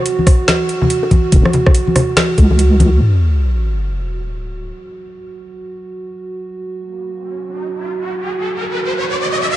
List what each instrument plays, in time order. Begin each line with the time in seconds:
Already playing: analog synth pad F#4
0.06 closed hi-hat
0.19 high conga
0.27 kick, cross-stick, open hi-hat
0.48 snare, closed hi-hat, high conga
0.69 closed hi-hat
0.82 high conga, low conga
0.90 closed hi-hat
1.03 high bongo
1.11 kick, closed hi-hat, high conga
1.32 wobble bass E1, kick, closed hi-hat
1.45 cross-stick, high bongo, high conga
1.53 closed hi-hat, low conga
1.66 kick, cross-stick, high bongo
1.75 closed hi-hat
1.87 high conga
1.96 cross-stick, open hi-hat, low conga
2.17 cross-stick, snare, closed hi-hat, high conga
2.38 wobble bass C#2, kick, closed hi-hat, high bongo
2.51 high bongo, high conga
2.59 closed hi-hat
2.80 closed hi-hat, high conga
3.01 analog synth pad F#4, sub drop
6.39 riser